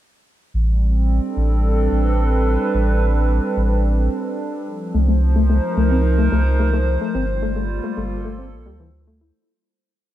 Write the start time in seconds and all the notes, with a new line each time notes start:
0.54 A1 G3
0.68 C4
1.09 D4
1.18 A4
1.37 A1
1.69 B4
1.92 A1
2.74 A1
3.57 A1
4.67 F3
4.94 C2 A3 C5
5.08 A3
5.23 D#4
5.32 A3 A#4
5.50 A3
5.77 C2 A3
5.91 C4
6.18 A3
6.32 C2 A3
6.60 A3
6.73 A3
7.01 A3
7.15 G1 G3 C4
7.25 F4
7.39 A3 A#3
7.56 A3
7.83 A3 A4
7.97 G1 A3
8.25 A3
8.39 C4
8.52 A#1
8.66 D2 G3
8.80 E3
9.07 A3
9.21 E4